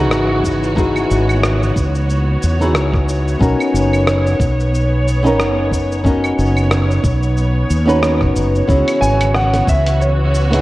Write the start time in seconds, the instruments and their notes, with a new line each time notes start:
Already playing: fretless electric bass C#2, string section C#3 E3 B3 F#4 C#5, nylon-string guitar B3 D#4 E4
0.00 nylon-string guitar F#4 G#4
0.11 fretless electric bass G#1, cross-stick, shaker
0.44 kick, shaker
0.64 shaker
0.75 nylon-string guitar B3 D#4 E4 F#4 G#4, kick, shaker
0.96 claves, shaker
1.11 fretless electric bass G#1, shaker
1.29 claves, shaker
1.43 cross-stick, shaker
1.63 shaker
1.76 fretless electric bass C#2, kick, shaker
1.95 shaker
2.10 shaker
2.43 fretless electric bass E2, shaker
2.60 nylon-string guitar B3 D#4 E4 F#4 G#4, shaker
2.75 fretless electric bass C#2, cross-stick, shaker
2.94 kick, cross-stick
3.09 shaker
3.28 shaker
3.39 fretless electric bass B1, nylon-string guitar B3 C#4 D#4 F#4 A#4, kick, shaker
3.61 claves, shaker
3.74 fretless electric bass F#1, shaker
3.94 claves, shaker
4.08 cross-stick, shaker
4.27 shaker
4.40 fretless electric bass B1, kick, shaker
4.60 shaker
4.75 shaker
5.08 shaker
5.23 nylon-string guitar B3 C#4 D#4 A#4, shaker
5.39 fretless electric bass F#1, cross-stick, shaker
5.72 kick, shaker
5.92 shaker
6.04 nylon-string guitar B3 C#4 D#4 F#4 A#4, kick, shaker
6.24 claves, shaker
6.38 fretless electric bass F#1, shaker
6.57 claves, shaker
6.71 cross-stick, shaker
6.91 shaker
7.04 fretless electric bass B1, kick, shaker
7.23 shaker
7.37 shaker
7.70 fretless electric bass D#2, shaker
7.86 nylon-string guitar B3 C#4 D#4 F#4 B4, shaker
8.03 cross-stick, shaker
8.21 fretless electric bass F#1, kick, cross-stick
8.36 fretless electric bass F#1, shaker
8.55 shaker
8.67 fretless electric bass C#2, string section C#3 E3 F#4, nylon-string guitar B3 C#4 E4 F#4 G#4, kick, shaker
8.88 closed hi-hat, claves, shaker
9.01 fretless electric bass G#1, grand piano G#5, shaker
9.21 closed hi-hat, claves, shaker
9.34 grand piano F#5, cross-stick, shaker
9.54 closed hi-hat, high bongo, shaker
9.67 fretless electric bass C#2, grand piano E5, kick, shaker
9.86 closed hi-hat, shaker
10.01 grand piano C#5, shaker
10.34 shaker
10.50 nylon-string guitar B3 D#4 E4 G#4, closed hi-hat, shaker